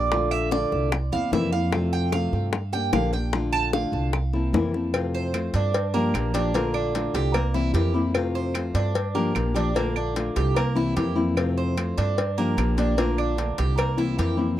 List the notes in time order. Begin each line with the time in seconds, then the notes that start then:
Already playing: A#1 A#3 D4 G4 D5
0.11 D3 A3 D4 F4, high bongo
0.31 E5, claves
0.51 D3 A3 D4 F4 D5, high bongo
0.72 C2, high bongo
0.92 muted nylon-string guitar stroke, high bongo, claves
1.12 E2 A#3 C4 E4 F5, high bongo
1.32 F2 C3 E3 A#3 C4 E4 E5, high bongo, low bongo
1.52 A#3 C4 E4 F5, high bongo
1.73 C3 A3 C4 F4, high bongo, claves
1.93 G5
2.12 C3 A3 C4 F4 F5, high bongo, claves
2.32 G2, high bongo
2.53 muted nylon-string guitar stroke, high bongo
2.73 A#3 D4 G4 G5, high bongo
2.92 A#1 D3 F3 A#3 D4 G4 F5, high bongo, low bongo, claves
3.13 A#3 D4 G4 G5, high bongo
3.33 D3 A3 D4 F4, high bongo
3.53 A5, claves
3.73 D3 A3 D4 F4 F5, high bongo
3.92 C2, high bongo
4.13 muted nylon-string guitar stroke, high bongo, claves
4.33 A#3 C4 E4, high bongo
4.53 F2 C3 E3 A#3 C4 E4, high bongo, low bongo
4.74 A#3 C4 E4, high bongo
4.93 C3 A3 C4 F4, cowbell, claves
5.15 C5
5.34 A3 C4 F4, cowbell, claves
5.54 G2 D4, cowbell
5.74 muted nylon-string guitar stroke, cowbell
5.94 F3 A#3 D4 G4
6.14 A#1 F3 A#3 D4 G4, cowbell, claves
6.34 F3 A#3 D4 G4, cowbell
6.54 D3 A3 A#3 D4 F4, cowbell
6.74 D4, claves
6.95 D3 A3 D4 F4, cowbell
7.14 C2 G4, cowbell
7.34 A#3, muted nylon-string guitar stroke, cowbell, claves
7.54 E3 A#3 C4 E4
7.74 F2 E3 A#3 C4 E4 G4, cowbell
7.94 E3 A#3 C4 E4
8.14 C3 A3 C4 F4, cowbell, claves
8.35 C5
8.54 A3 C4 F4, cowbell, claves
8.74 G2 D4, cowbell
8.95 muted nylon-string guitar stroke, cowbell
9.15 F3 A#3 D4 G4
9.35 A#1 F3 A#3 D4 G4, cowbell, claves
9.54 F3 A#3 D4 G4, cowbell
9.74 D3 A3 A#3 D4 F4, cowbell
9.96 D4, claves
10.16 D3 A3 D4 F4, cowbell
10.36 C2 G4, cowbell
10.56 A#3, muted nylon-string guitar stroke, cowbell, claves
10.75 E3 A#3 C4 E4
10.96 F2 E3 A#3 C4 E4 G4, cowbell
11.16 E3 A#3 C4 E4
11.37 C3 A3 C4 F4, cowbell, claves
11.58 C5
11.77 A3 C4 F4, cowbell, claves
11.98 G2 D4, cowbell
12.18 muted nylon-string guitar stroke, cowbell
12.38 F3 A#3 D4 G4
12.57 A#1 F3 A#3 D4 G4, cowbell, claves
12.77 F3 A#3 D4 G4, cowbell
12.97 D3 A3 A#3 D4 F4, cowbell
13.18 D4, claves
13.37 D3 A3 D4 F4, cowbell
13.58 C2 G4, cowbell
13.78 A#3, muted nylon-string guitar stroke, cowbell, claves
13.97 E3 A#3 C4 E4
14.18 F2 E3 A#3 C4 E4 G4, cowbell
14.37 E3 A#3 C4 E4